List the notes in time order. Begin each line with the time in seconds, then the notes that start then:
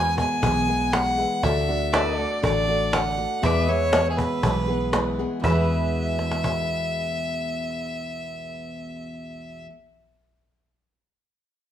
Already playing: E2 E3 G#3 B3 G#4 B4 E5 G#5
0.17 E3 G#3 B3 G#4 G#5, cajon bass
0.42 B1 E2 B2 E3 G#3 B3 G#4, cajon bass
0.68 E3 G#3 B3 G#4
0.92 E3 G#3 B3 G#4 F#5, cajon slap
1.18 E3 G#3 B3 G#4 B4 E5, cajon slap
1.43 D2 D3 A3 D4 F#4 A4 D5 E5, cajon bass
1.68 A3 D4 F#4
1.93 D3 A3 D4 F#4 B4 D5 E5, cajon slap
2.18 A3 D4 F#4 A4 D5, cajon slap
2.42 A1 D3 A3 D4 F#4 D5, cajon bass
2.68 A3 D4 F#4
2.93 D3 A3 D4 F#4 F#5, cajon slap
3.17 A3 D4 F#4, cajon slap
3.42 E2 B2 E3 G#3 B3 E4 G#4 B4 E5, cajon bass
3.46 D5
3.67 E3 G#3 B3 G#4 C#5 E5
3.92 E3 G#3 B3 G#4, cajon slap
4.11 G#4
4.17 E3 G#3 B3 G#4 B4, cajon bass
4.43 B1 E2 B2 E3 G#3 B3 G#4, cajon bass
4.67 E3 G#3 B3 G#4
4.92 E3 G#3 B3 E4 G#4 B4, cajon slap
5.19 E3 G#3 B3 G#4, cajon slap
5.40 E2 B2 E4 G#4 E5
5.44 E3 B4 E5, cajon bass
5.50 G#3 B3
5.55 G#4
6.19 cajon slap
6.31 cajon slap
6.44 cajon bass